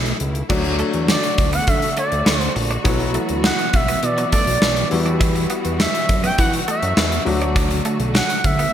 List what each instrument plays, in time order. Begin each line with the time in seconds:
Already playing: analog synth bass B1, string section B2 A3 E4, grand piano A3 B3 E4 F#4
0.06 closed hi-hat
0.20 analog synth bass C#2, closed hi-hat
0.35 closed hi-hat
0.49 analog synth bass D2, string section D3 A3 F#4, grand piano F#3 A3 D4 F#4, clean electric guitar D4, kick, crash
0.64 muted clean electric guitar stroke, closed hi-hat
0.79 clean electric guitar A3, closed hi-hat
0.94 analog synth bass E2, closed hi-hat
1.08 clean electric guitar F#3, analog synth lead D5, snare, tambourine
1.23 muted clean electric guitar stroke, closed hi-hat
1.38 analog synth bass D2, kick, closed hi-hat
1.53 clean electric guitar B3, analog synth lead F#5, closed hi-hat
1.67 analog synth bass D3, analog synth lead E5, kick, closed hi-hat
1.82 closed hi-hat
1.97 clean electric guitar A3, analog synth lead D5, closed hi-hat
2.12 analog synth bass D2, closed hi-hat
2.26 analog synth bass D2, clean electric guitar B3, snare, tambourine
2.40 analog synth lead C5, closed hi-hat
2.56 analog synth bass A#1, muted clean electric guitar stroke, open hi-hat
2.71 clean electric guitar D4, closed hi-hat
2.84 analog synth bass B1, string section E3 B3, grand piano F#3 B3 E4 F#4, clean electric guitar B3, kick, closed hi-hat
3.00 muted clean electric guitar stroke, closed hi-hat
3.14 clean electric guitar A3, closed hi-hat
3.29 analog synth bass D2, closed hi-hat
3.44 clean electric guitar F#3, analog synth lead F#5, snare, tambourine
3.59 muted clean electric guitar stroke, closed hi-hat
3.73 analog synth bass B1, analog synth lead E5, kick, closed hi-hat
3.88 clean electric guitar B3, closed hi-hat
4.03 analog synth bass B2, analog synth lead D5, muted clean electric guitar stroke, closed hi-hat
4.18 clean electric guitar F#3, closed hi-hat
4.32 clean electric guitar A3, analog synth lead D5, kick, closed hi-hat
4.47 analog synth bass B1, closed hi-hat
4.62 analog synth bass B1, clean electric guitar B3, snare, tambourine
4.77 muted clean electric guitar stroke, closed hi-hat
4.90 analog synth bass E2, grand piano G3 B3 E4 F#4, string section G3 F#4, open hi-hat
5.06 clean electric guitar D4, closed hi-hat
5.21 clean electric guitar E4, kick, closed hi-hat
5.36 muted clean electric guitar stroke, closed hi-hat
5.50 clean electric guitar B3, closed hi-hat
5.65 analog synth bass E2, closed hi-hat
5.80 clean electric guitar G3, analog synth lead E5, snare, tambourine
5.94 muted clean electric guitar stroke, closed hi-hat
6.09 analog synth bass F#2, kick, closed hi-hat
6.24 clean electric guitar B3, analog synth lead G5, closed hi-hat
6.38 analog synth bass E3, analog synth lead F#5, kick, closed hi-hat
6.53 closed hi-hat
6.68 clean electric guitar A3, analog synth lead E5, closed hi-hat
6.83 analog synth bass F#2, closed hi-hat
6.97 analog synth bass E2, clean electric guitar B3, snare, tambourine
7.12 closed hi-hat
7.25 analog synth bass D2, string section D3 A3, grand piano F#3 A3 D4 F#4, muted clean electric guitar stroke, open hi-hat
7.42 clean electric guitar D4, closed hi-hat
7.56 clean electric guitar D4, kick, closed hi-hat
7.71 muted clean electric guitar stroke, closed hi-hat
7.85 clean electric guitar A3, closed hi-hat
8.00 analog synth bass B1, closed hi-hat
8.15 clean electric guitar F#3, analog synth lead F#5, snare, tambourine
8.30 muted clean electric guitar stroke, closed hi-hat
8.44 analog synth bass D2, analog synth lead E5, kick, closed hi-hat
8.59 clean electric guitar B3, closed hi-hat